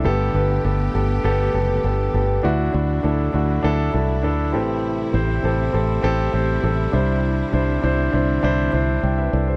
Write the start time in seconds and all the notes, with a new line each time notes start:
Already playing: D3
0.04 G1 G2 D3 A3 B3 G4 A4
0.33 G1 B3 G4 B4
0.64 G1 B3 G4 A4
0.93 G1 B3 G4 A4
1.23 G1 B3 G4 A4
1.53 F#1 B3 G4 A4
1.83 G1 B3 G4 A4
2.13 G1 B3 G4 A4
2.43 D2 A2 F#3 A3 D4 E4 F#4
2.73 D2 D4 E4 F#4
3.03 D2 D4 E4 A4
3.33 D2 D4 E4 F#4
3.63 D2 D4 E4 A4
3.93 C2 D4 E4 A4
4.22 D2 D4 E4 A4
4.52 A1 A2 C3 E3 G3 A3 C4 G4 A4
5.13 A1 C4 G4 C5
5.43 A1 C4 G4 A4
5.73 A1 C4 G4 A4
6.02 A1 C4 G4 A4
6.33 A1 C4 G4 C5
6.62 A1 C4 G4 A4
6.92 C2 C3 D3 G3 C4 D4 E4 C5
7.52 C2 D4 E4 C5
7.82 C2 D4 E4 C5
8.12 C2 D4 E4 C5
8.43 C2 D4 E4 C5
8.72 C2 D4 E4 C5
9.03 C2 D5 G5
9.18 B4 E5
9.32 C2 A4 D5
9.48 G4 C5